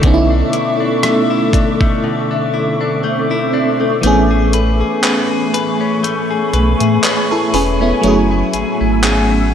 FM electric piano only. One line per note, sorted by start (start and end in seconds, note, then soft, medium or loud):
0.01 3.98 D3 medium
0.01 3.99 A3 medium
0.01 4.00 B3 medium
0.06 4.01 C#4 medium
0.06 0.12 D#4 medium
0.14 4.05 E4 medium
4.01 7.98 E3 medium
4.01 7.99 A3 medium
4.01 6.50 B3 medium
4.06 6.51 C#4 medium
4.06 6.51 G#4 medium
7.05 7.30 G#4 medium
7.05 7.30 C#5 medium
7.31 7.53 E4 medium
7.31 7.53 A4 medium
7.55 7.80 C#4 medium
7.55 7.80 G#4 medium
7.82 8.29 B3 medium
7.82 8.04 E4 medium
8.01 9.54 F#3 medium
8.01 9.54 A3 medium
8.01 9.54 C#4 medium
8.06 9.54 E4 medium
8.06 9.54 G#4 medium